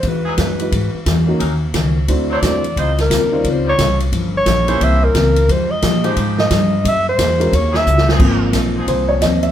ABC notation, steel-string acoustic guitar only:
X:1
M:4/4
L:1/8
Q:"Swing" 1/4=176
K:Ab
V:1 name="Steel-string acoustic guitar"
[=E,^G,^D^F] z [E,G,DF] z [E,G,DF] z [E,G,DF] z | [E,B,D_G] z [E,B,DG] z [=D,^F,C=E] z [D,F,CE] z | [D,G,CF] z [D,G,CF] z [D,G,CF] z [D,G,CF] z | [G,,F,B,D] z [G,,F,B,D] z [C,=E,B,D] z [C,E,B,D] z |
[F,A,EG] z [F,A,EG] z [F,A,EG] z [F,A,EG] z | [_G,B,_FA] z [G,B,FA] z [G,B,FA] z [G,B,FA] z | [A,,F,CE] z [A,,F,CE] z [A,,F,CE] z [A,,F,CE] z |]